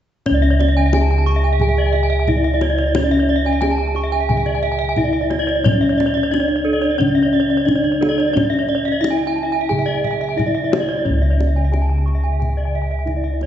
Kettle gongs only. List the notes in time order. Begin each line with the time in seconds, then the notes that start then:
0.26 C#4
0.31 C#2
0.93 D4
2.28 D4
2.96 C#4
3.62 D4
4.29 C#3
4.97 D4
5.64 C#4
6.32 D4
7.00 C#3
7.67 D4
8.35 C#4
9.03 D4
9.71 C#3
10.38 D4
11.05 C#4
11.10 C#2
11.73 D4
13.06 D4